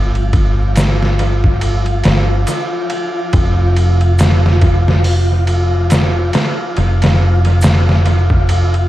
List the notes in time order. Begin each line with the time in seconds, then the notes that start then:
Already playing: G1 F3 F4
0.15 ride
0.33 kick, ride
0.76 snare, ride, shaker
1.02 snare
1.19 ride
1.44 kick
1.61 ride
1.86 ride
2.04 G1, snare, ride
2.47 ride, shaker
2.90 ride
3.33 F1, kick, ride
3.76 ride
4.01 ride
4.19 snare, ride, shaker
4.46 snare
4.61 kick, ride
4.88 snare
5.04 open hi-hat
5.47 ride
5.90 snare, ride, shaker
6.33 snare, ride
6.77 F1, ride
7.02 snare, ride
7.45 ride
7.62 snare, ride, shaker
7.89 snare
8.06 ride
8.30 kick
8.49 ride
8.74 ride